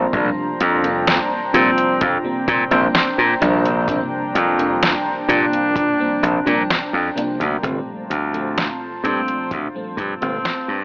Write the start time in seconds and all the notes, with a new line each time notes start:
Already playing: C5 A#5
0.13 A#1 C3 F3 G3 A#3 D4 G5, kick, closed hi-hat
0.60 F2, closed hi-hat
0.83 C3 F3 G3 A#3 D4, closed hi-hat
1.07 snare, closed hi-hat
1.54 A#2 C3 F3 G3 A#3 C4 F4, closed hi-hat
1.78 closed hi-hat
2.01 F2, kick, closed hi-hat
2.23 C3 F3 G3 A#3 C4
2.48 A#2, kick, closed hi-hat
2.70 A#1 C3 F3 G3 A#3 C4 D4, closed hi-hat
2.94 C4, snare, closed hi-hat
3.18 A#2
3.40 A#1 C3 F3 G3 A#3 D4, closed hi-hat
3.66 closed hi-hat
3.87 C3 F3 G3 A#3 D4, kick, closed hi-hat
4.35 F2, closed hi-hat
4.58 C3 F3 G3 A#3 D4, closed hi-hat
4.83 snare, closed hi-hat
5.28 A#2 C3 F3 G3 A#3 D4 F4, kick, closed hi-hat
5.53 closed hi-hat
5.76 kick, closed hi-hat
5.99 C3 F3 G3 A#3 C4
6.23 A#1, closed hi-hat
6.45 A#2 C3 F3 G3 A#3 D4, closed hi-hat
6.70 snare, closed hi-hat
6.93 F2
7.15 C3 F3 G3 A#3 D4, closed hi-hat
7.40 D2, closed hi-hat
7.62 G1 A#2 F3 G3 A3 C4 F4 C5 A5, kick, closed hi-hat
8.10 D2, closed hi-hat
8.33 A#2 F3 G3 A3 C4, closed hi-hat
8.58 snare, closed hi-hat
9.03 G2 A#2 F3 G3 A3 C4 D4, closed hi-hat
9.28 closed hi-hat
9.51 D2, kick, closed hi-hat
9.74 A#2 F3 G3 A3 C4
9.97 G2, kick, closed hi-hat
10.21 G1 A#2 F3 G3 A3 C4, closed hi-hat
10.45 snare, closed hi-hat
10.68 G2